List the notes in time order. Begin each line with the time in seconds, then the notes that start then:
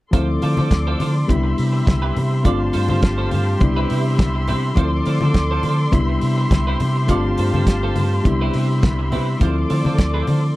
0.11 D2 F3 A3 C4 E4 F4 A4 C5 D5 C6 D6, kick, closed hi-hat, muted conga, low conga
0.29 muted clean electric guitar stroke
0.42 D3 F4 A4 C5, open hi-hat, muted conga
0.57 D3 F4 A4 C5, high conga
0.71 D2, kick, snare, closed hi-hat, muted conga
0.87 F4 A4 C5
1.00 D3 F4 A4 C5, open hi-hat, muted conga, high conga
1.16 muted clean electric guitar stroke
1.27 C2 G3 B3 D4 E4 G4 E5 B5, muted clean electric guitar stroke, kick, closed hi-hat, high conga, low conga
1.44 muted clean electric guitar stroke
1.58 C3, open hi-hat
1.73 muted clean electric guitar stroke
1.86 C2, muted clean electric guitar stroke, kick, snare, closed hi-hat, muted conga, high conga
2.02 E4 G4 B4
2.15 C3, muted clean electric guitar stroke, open hi-hat, muted conga, low conga
2.31 muted clean electric guitar stroke
2.44 G1 A3 C4 D4 F4 G4 A4 D5 F5 A5, kick, closed hi-hat, muted conga, low conga
2.60 muted clean electric guitar stroke
2.73 G2 F4 A4 C5, open hi-hat, muted conga
2.88 G2 F4 A4 C5, high conga
3.02 G1, kick, snare, closed hi-hat
3.18 F4 A4 C5
3.31 G2 F4 A4 C5, open hi-hat, high conga
3.47 muted clean electric guitar stroke
3.59 C2 G3 B3 D4 E4 E5 B5, muted clean electric guitar stroke, kick, closed hi-hat, high conga, low conga
3.76 C4 E4 B4
3.90 C3 C4 E4 B4, open hi-hat, muted conga
4.06 muted clean electric guitar stroke
4.18 C2, muted clean electric guitar stroke, kick, snare, closed hi-hat, high conga
4.35 muted clean electric guitar stroke
4.48 C3 C4 E4 B4, open hi-hat, muted conga, low conga
4.64 muted clean electric guitar stroke
4.75 D2 F3 A3 C4 E4 F4 A4 C5 D5 D6, kick, closed hi-hat, muted conga, low conga
4.93 muted clean electric guitar stroke
5.05 D3 F4 A4 C5, open hi-hat, muted conga
5.21 D3 F4 A4 C5, high conga
5.34 D2, kick, snare, closed hi-hat
5.51 F4 A4 C5
5.63 D3 F4 A4 C5, open hi-hat, high conga
5.80 muted clean electric guitar stroke
5.91 C2 G3 B3 D4 E4 G4 E5 B5, muted clean electric guitar stroke, kick, closed hi-hat, muted conga, high conga, low conga
6.09 muted clean electric guitar stroke
6.21 C3, open hi-hat
6.38 muted clean electric guitar stroke
6.51 C2, muted clean electric guitar stroke, kick, snare, closed hi-hat, muted conga, high conga
6.67 C4 E4 B4
6.80 C3, muted clean electric guitar stroke, open hi-hat, muted conga, low conga
6.96 muted clean electric guitar stroke
7.07 G1 A3 C4 D4 F4 A4 D5 F5 A5, kick, closed hi-hat, muted conga, low conga
7.25 muted clean electric guitar stroke
7.38 G2 F4 A4 C5, open hi-hat, muted conga
7.54 G2 F4 A4 C5, high conga
7.67 G1, kick, snare, closed hi-hat
7.83 F4 A4 C5
7.96 G2 F4 A4 C5, open hi-hat, muted conga, high conga
8.12 muted clean electric guitar stroke
8.23 C2 G3 B3 D4 E4 E5 B5, muted clean electric guitar stroke, kick, closed hi-hat, muted conga, high conga, low conga
8.41 C4 E4 B4
8.54 C3 C4 E4 B4, open hi-hat, muted conga
8.70 muted clean electric guitar stroke
8.83 C2, kick, snare, closed hi-hat, muted conga, high conga
8.99 muted clean electric guitar stroke
9.12 C3 C4 E4 B4, open hi-hat, muted conga, low conga
9.28 muted clean electric guitar stroke
9.40 D2 F3 A3 C4 E4 F4 A4 C5 D5 D6, kick, closed hi-hat, low conga
9.57 muted clean electric guitar stroke
9.70 D3 F4 A4 C5, open hi-hat, muted conga
9.85 D3 F4 A4 C5, high conga
9.98 D2, kick, snare, closed hi-hat
10.14 F4 A4 C5
10.27 D3 F4 A4 C5, open hi-hat, high conga